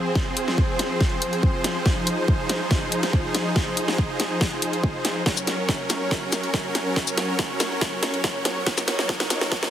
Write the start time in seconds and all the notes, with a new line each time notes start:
Already playing: F3 C4 G#4 C5
0.15 kick, snare
0.37 closed hi-hat
0.48 snare
0.58 kick
0.79 snare, closed hi-hat
1.01 kick, snare
1.22 closed hi-hat
1.33 closed hi-hat
1.43 kick
1.64 snare, closed hi-hat
1.86 D#4 G#4, kick, snare
2.07 closed hi-hat
2.28 kick
2.49 snare, closed hi-hat
2.71 kick, snare
2.92 closed hi-hat
3.03 snare, closed hi-hat
3.13 kick
3.35 snare, closed hi-hat
3.56 kick, snare
3.77 closed hi-hat
3.88 snare
3.98 kick
4.20 snare, closed hi-hat
4.41 kick, snare
4.62 closed hi-hat
4.73 closed hi-hat
4.83 kick
5.05 snare, closed hi-hat
5.26 F#3 C#4 A#4 C#5, kick, snare
5.37 shaker
5.47 snare, closed hi-hat
5.69 kick, snare
5.90 snare, closed hi-hat, shaker
6.11 kick, snare
6.32 snare, closed hi-hat, shaker
6.43 closed hi-hat
6.54 kick, snare
6.75 snare, closed hi-hat
6.96 kick, snare
7.07 shaker
7.17 snare, closed hi-hat
7.39 kick, snare
7.60 snare, closed hi-hat, shaker
7.81 kick, snare
8.03 snare, closed hi-hat
8.14 closed hi-hat
8.24 kick, snare
8.45 snare, closed hi-hat
8.66 F#3 D#4 A#4, kick, snare
8.78 snare, shaker
8.88 snare, closed hi-hat
8.99 snare
9.09 kick, snare
9.20 snare
9.30 snare, closed hi-hat, shaker
9.41 snare
9.52 kick, snare
9.63 snare